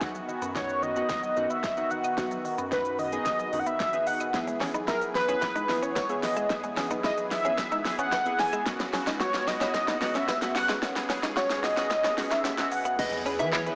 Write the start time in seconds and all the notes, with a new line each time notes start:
0.01 B1 D#3 B3 D#4 F#4, kick, snare, shaker
0.15 F#3, shaker
0.29 D#3, shaker
0.42 F#2 B3, shaker
0.55 D#3 B3 D#4 F#4 C#5, kick, snare, shaker
0.69 shaker
0.83 D#3 D#5, shaker
0.96 B3 D#4 F#4, shaker
1.09 D#3, kick, snare, shaker
1.23 G#1 F#3, shaker
1.37 F#2 D#3 B3 D#4 F#4, shaker
1.50 B3 E5, shaker
1.64 G#1 D#3, kick, snare, shaker
1.77 B3 D#4 F#4, shaker
1.90 D#3 F#5, shaker
2.04 D#5, shaker
2.18 B1 D#3 B3 D#4 F#4, kick, snare, closed hi-hat, shaker
2.31 F#3, closed hi-hat, shaker
2.45 D#3, open hi-hat, shaker
2.58 F#2 B3, closed hi-hat, shaker
2.72 D#3 B3 D#4 F#4 B4, kick, snare, closed hi-hat, shaker
2.85 closed hi-hat, shaker
2.99 D#3 D#5, open hi-hat, shaker
3.12 B3 D#4 G#4, closed hi-hat, shaker
3.26 D#3, kick, snare, closed hi-hat, shaker
3.39 G#1 F#3, closed hi-hat, shaker
3.53 F#2 D#3 B3 D#4 F#4, open hi-hat, shaker
3.59 F#5
3.66 B3 E5, closed hi-hat, shaker
3.80 G#1 D#3, kick, snare, closed hi-hat, shaker
3.93 B3 D#4 G#4, closed hi-hat, shaker
4.07 D#3 F#5, open hi-hat, shaker
4.20 D#5, closed hi-hat, shaker
4.34 E2 E3 B3 E4 G#4, kick, snare, closed hi-hat, shaker
4.47 G#3, muted clean electric guitar stroke, closed hi-hat, shaker
4.61 E3 C#4, snare, open hi-hat, tambourine, shaker
4.74 B1 B3 D#4, closed hi-hat, shaker
4.88 E3 B3 E4 G#4 A#4, kick, snare, closed hi-hat, tambourine, shaker
5.01 muted clean electric guitar stroke, closed hi-hat, shaker
5.15 E3 B4, snare, open hi-hat, tambourine, shaker
5.28 B3 C#4 E4 G#4, closed hi-hat, shaker
5.42 E3, kick, snare, closed hi-hat, tambourine, shaker
5.56 C#2 G#3 D#4, closed hi-hat, shaker
5.69 B1 E3 B3 E4 G#4, muted clean electric guitar stroke, snare, open hi-hat, tambourine, shaker
5.83 B3 C#4 C#5, closed hi-hat, shaker
5.96 C#2 E3 B3, kick, snare, closed hi-hat, tambourine, shaker
6.09 B3 E4 G#4, closed hi-hat, shaker
6.23 E3 D#5, muted clean electric guitar stroke, snare, open hi-hat, tambourine, shaker
6.37 G#3 E5, closed hi-hat, shaker
6.50 E2 E3 B3 E4 G#4, kick, snare, closed hi-hat, tambourine, shaker
6.64 G#3, muted clean electric guitar stroke, closed hi-hat, shaker
6.77 E3 C#4, snare, open hi-hat, tambourine, shaker
6.91 B1 B3 D#4, closed hi-hat, shaker
7.04 E3 B3 E4 G#4 D#5, kick, snare, closed hi-hat, tambourine, shaker
7.18 muted clean electric guitar stroke, closed hi-hat, shaker
7.31 E3 E5, snare, open hi-hat, tambourine, shaker
7.45 B3 C#4 E4 G#4, closed hi-hat, shaker
7.58 E3, kick, snare, closed hi-hat, tambourine, shaker
7.72 C#2 G#3 D#4, closed hi-hat, shaker
7.85 B1 E3 B3 E4 G#4, muted clean electric guitar stroke, snare, open hi-hat, tambourine, shaker
7.99 B3 C#4 F#5, closed hi-hat, shaker
8.12 F2 E3 B3, kick, snare, closed hi-hat, tambourine, shaker
8.26 B3 E4 G#4, closed hi-hat, shaker
8.39 E3 G#5, muted clean electric guitar stroke, snare, open hi-hat, tambourine, shaker
8.53 G#3 E5, closed hi-hat, shaker
8.66 F#2 C#3 F#3 B3 C#4 F#4, kick, snare, closed hi-hat, tambourine, shaker
8.80 B3, muted clean electric guitar stroke, snare, closed hi-hat, shaker
8.93 F#3 C#4, snare, open hi-hat, tambourine, shaker
9.07 C#2 C#4 D#4, snare, closed hi-hat, shaker
9.20 F#3 B3 C#4 F#4 C#5, kick, snare, closed hi-hat, tambourine, shaker
9.34 muted clean electric guitar stroke, snare, closed hi-hat, shaker
9.47 F#3 D#5, snare, open hi-hat, tambourine, shaker
9.61 B3 C#4 E4, snare, closed hi-hat, shaker
9.74 F#3, kick, snare, closed hi-hat, tambourine, shaker
9.88 D#2 B3 D#4, snare, closed hi-hat, shaker
10.01 C#2 F#3 B3 C#4 F#4, muted clean electric guitar stroke, snare, open hi-hat, tambourine, shaker
10.15 C#4 E5, snare, closed hi-hat, shaker
10.28 D#2 F#3 B3, kick, snare, closed hi-hat, tambourine, shaker
10.42 B3 C#4 F#4, snare, closed hi-hat, shaker
10.55 F#3 F#5, muted clean electric guitar stroke, snare, open hi-hat, shaker
10.69 G#3 F#5, snare, closed hi-hat, shaker
10.82 F#2 F#3 B3 C#4 F#4 G#4, kick, snare, closed hi-hat, tambourine, shaker
10.96 B3, muted clean electric guitar stroke, snare, closed hi-hat, shaker
11.09 F#3 C#4, snare, open hi-hat, tambourine, shaker
11.23 C#2 C#4 D#4, snare, closed hi-hat, shaker
11.36 F#3 B3 C#4 F#4 C#5, kick, snare, closed hi-hat, tambourine, shaker
11.50 muted clean electric guitar stroke, snare, closed hi-hat, shaker
11.64 F#3 D#5, snare, open hi-hat, tambourine, shaker
11.77 B3 C#4 F#4, snare, closed hi-hat, shaker
11.90 F#3, kick, snare, closed hi-hat, tambourine, shaker
12.04 D#2 B3 C#4, snare, closed hi-hat, shaker
12.18 C#2 F#3 B3 C#4 F#4, muted clean electric guitar stroke, snare, open hi-hat, tambourine, shaker
12.31 C#4 D#4 E5, snare, closed hi-hat, shaker
12.45 D#2 F#3 C#4, snare, closed hi-hat, tambourine, shaker
12.58 B3 C#4 F#4, snare, closed hi-hat, shaker
12.72 F#3 F#5, muted clean electric guitar stroke, open hi-hat, shaker
12.85 B3 F#5, closed hi-hat, shaker
12.99 E2 E3 B3 E4 G#4 B4 D#5, kick, closed hi-hat, crash, tambourine, impact, shaker
13.12 muted clean electric guitar stroke, closed hi-hat, shaker
13.26 B3 C#4 E4 G#4 B4, open hi-hat, tambourine, shaker
13.39 E3 D#4 E5, closed hi-hat, shaker
13.53 E4 C#5, kick, snare, clap, closed hi-hat, tambourine, shaker
13.66 B3 E4 G#4 B4, muted clean electric guitar stroke, closed hi-hat, shaker